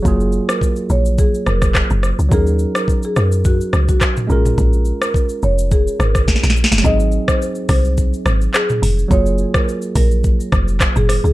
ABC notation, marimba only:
X:1
M:4/4
L:1/16
Q:"Swing 16ths" 1/4=106
K:Abmix
V:1 name="Marimba"
z3 B z2 d z A z B z4 z | A2 z B z A B z G z2 G z2 A z | z3 B z2 d z A z B z4 z | e z2 c z2 c z4 z A3 z |
d z2 B z2 B z6 A z A |]